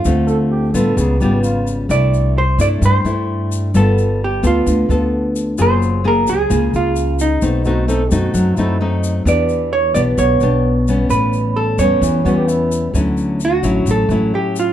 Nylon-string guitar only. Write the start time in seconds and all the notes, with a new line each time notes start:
0.05 D3 A3 C4 F4
0.74 G3 B3 F4
0.97 C#3
1.21 G3 B3 F4
1.89 C3 A3 D4 E4
2.59 A3 D4 E4
2.82 G3
3.05 A3 D4 E4
3.75 G3 B3 F4 A4
4.43 B3 F4 A4
4.66 D3
4.90 B3 F4 A4
5.58 F#3 A#3 F4 G#4
6.04 A#3 F4 G#4
6.50 C#3 A#3 F4 G#4
7.42 B2 A3 C4 D#4
7.65 A3 C4 D#4
7.88 A3 C4 D#4
8.12 A3 C4 D#4
8.35 F#3
8.58 A3 C4 D#4
8.81 A3 C4 D#4
9.26 E3 B3 D4 G4
9.95 B3 D4 G4
10.18 B2
10.42 B3 D4 G4
10.88 G3 B3 C#4
11.11 A2
11.80 G3 B3 C#4
12.02 E3
12.25 G3 B3 C#4
12.94 D3 F#3 C#4 E4
13.63 F#3 C#4 E4
13.87 A2
14.11 F#3 C#4 E4